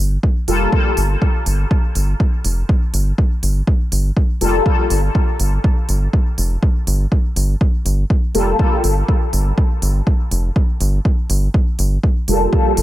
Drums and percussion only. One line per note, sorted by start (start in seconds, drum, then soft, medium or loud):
0.23 kick loud
0.48 open hi-hat medium
0.72 kick loud
0.97 open hi-hat medium
1.22 kick loud
1.46 open hi-hat medium
1.71 kick loud
1.95 open hi-hat medium
2.20 kick loud
2.45 open hi-hat medium
2.69 kick loud
2.94 open hi-hat medium
3.18 kick loud
3.43 open hi-hat medium
3.67 kick loud
3.92 open hi-hat medium
4.17 kick loud
4.41 open hi-hat medium
4.66 kick loud
4.90 open hi-hat medium
5.15 kick loud
5.40 open hi-hat medium
5.64 kick loud
5.89 open hi-hat medium
6.13 kick loud
6.38 open hi-hat medium
6.63 kick loud
6.87 open hi-hat medium
7.12 kick loud
7.36 open hi-hat medium
7.61 kick loud
7.86 open hi-hat medium
8.10 kick loud
8.35 open hi-hat medium
8.59 kick loud
8.84 open hi-hat medium
9.08 kick loud
9.33 open hi-hat medium
9.58 kick loud
9.82 open hi-hat medium
10.07 kick loud
10.31 open hi-hat medium
10.56 kick loud
10.81 open hi-hat medium
11.05 kick loud
11.30 open hi-hat medium
11.54 kick loud
11.79 open hi-hat medium
12.03 kick loud
12.28 open hi-hat medium
12.53 kick loud
12.77 open hi-hat medium